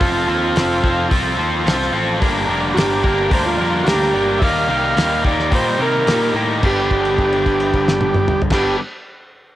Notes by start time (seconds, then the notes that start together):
Already playing: C4 F4 A4
0.00 F1 F3 C4 F4 A4, kick, open hi-hat
0.27 D#2 F3 C4 F4 A4
0.55 F1 F3 C4 F4 A4, snare, open hi-hat
0.83 F1 F3 C4 F4 A4, kick
1.10 C2 F3 C4 F4 A4, kick, open hi-hat
1.37 D#2 F3 C4 F4 A4
1.65 C2 F3 C4 F4 A4, snare, open hi-hat
1.82 snare
1.93 A1 F3 C4 F4 A4
2.20 G1 G2 D3 G3 A#3 D4 G4 A#4, kick, open hi-hat
2.47 F1 G2 D3 G3 A#3 D4 A#4
2.74 G1 G2 D3 G3 A#3 D4 F#4 A#4, open hi-hat
2.78 G4, snare
3.02 G1 G2 D3 G3 A#3 D4 A#4, kick
3.31 D2 G2 D3 G3 A#3 D4 A#4 C5, kick, open hi-hat
3.46 F4
3.58 F2 G2 D3 G3 A#3 D4 A#4
3.84 D2 G2 D3 G3 A#3 F#4, snare, open hi-hat
3.88 D4 G4 A#4
4.03 snare
4.13 G1 G2 D3 G3 A#3 D4 A#4
4.39 D#2 D#3 G3 A#3 D#4 G4 A#4 E5, kick, open hi-hat
4.44 G4 F5
4.68 C2 D#3 G3 A#3 D#4 G4
4.96 D#2 D#3 G3 A#3 D#4 G4, snare, open hi-hat
5.23 D#2 D#3 G3 A#3 D#4 G4, kick
5.27 D5
5.40 snare
5.51 A#2 D#3 G3 A#3 D#4 G4 C5, kick, open hi-hat
5.79 C3 D#3 G3 A#3 D#4 G4 A#4
6.07 A#2 D#3 G3 A#3 D#4 G4, snare, open hi-hat
6.34 A2 D#3 G3 A#3 D#4 G4
6.61 G1 G2 D3 G3 B3 D4 G4 B4, kick, crash
6.65 G4
6.91 kick, crash
7.05 crash
7.18 kick, crash
7.32 crash
7.46 kick, crash
7.60 crash
7.73 kick, crash
7.88 snare
8.01 high tom
8.14 mid tom
8.28 mid tom
8.42 floor tom
8.50 G1 G2 D3 G3 B3 D4 G4 B4, kick, snare, crash
8.55 G4